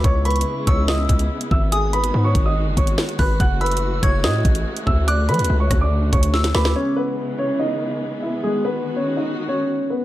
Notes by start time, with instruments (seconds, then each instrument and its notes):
0.04 808-style bass C#2, string section C#3 G#3 B3 E4, grand piano C#5 C#6, kick, closed hi-hat
0.25 grand piano B4 B5, synth bell C#6, closed hi-hat
0.31 closed hi-hat
0.36 closed hi-hat
0.41 closed hi-hat
0.67 808-style bass C#2, grand piano C#5 C#6, synth bell E6, kick, closed hi-hat
0.88 grand piano D#5 D#6, snare
1.09 808-style bass C#2, kick, closed hi-hat
1.19 closed hi-hat
1.41 closed hi-hat
1.51 808-style bass G#1, grand piano E5 E6, kick
1.72 string section D#3 G#3 F#4, grand piano G#4 G#5, synth bell D#6, closed hi-hat
1.93 grand piano B4 B5, closed hi-hat
2.04 closed hi-hat
2.14 808-style bass G#2
2.25 grand piano C#5 C#6
2.35 808-style bass G#1, kick, closed hi-hat
2.46 grand piano D#5 D#6
2.67 808-style bass F#1
2.77 808-style bass G#1, grand piano C#5 C#6, kick, closed hi-hat
2.87 closed hi-hat
2.98 snare
3.09 closed hi-hat
3.19 808-style bass G#1, grand piano B4 B5, synth bell F#6, kick, open hi-hat
3.40 808-style bass F#1, string section C#3 E3 A3, grand piano F#5 F#6, kick, closed hi-hat
3.61 grand piano B4 B5, synth bell E6, closed hi-hat
3.66 closed hi-hat
3.72 closed hi-hat
3.77 closed hi-hat
4.03 808-style bass F#1, grand piano C#5 C#6, synth bell G#6, kick, closed hi-hat
4.24 808-style bass A2, grand piano D#5 D#6, snare
4.45 808-style bass A1, kick, closed hi-hat
4.55 closed hi-hat
4.77 closed hi-hat
4.87 808-style bass D2, grand piano E5 E6, kick
5.08 string section D3, grand piano D5 D6, synth bell F#6, closed hi-hat
5.29 808-style bass F#3, grand piano B4 B5, closed hi-hat
5.34 closed hi-hat
5.39 808-style bass D2, closed hi-hat
5.44 closed hi-hat
5.50 808-style bass C#2
5.60 grand piano C#5 C#6
5.71 808-style bass D2, kick, cross-stick, closed hi-hat
5.81 grand piano D5 D6
6.13 808-style bass D2, grand piano C#5 C#6, kick, closed hi-hat
6.23 closed hi-hat
6.34 synth bell E6, snare
6.44 snare, closed hi-hat
6.55 808-style bass D2, grand piano B4 B5, synth bell D6, snare
6.65 snare
6.75 string section C#3 E3 G#3 B3, grand piano C#4 C#5
6.96 grand piano B3 B4
7.38 grand piano C#4 C#5
7.60 grand piano D#4 D#5
8.22 grand piano E4 E5
8.43 string section D#3 F#4, grand piano G#3 G#4
8.65 grand piano B3 B4
8.96 grand piano C#4 C#5
9.17 grand piano D#4 D#5
9.48 grand piano C#4 C#5
9.90 grand piano B3 B4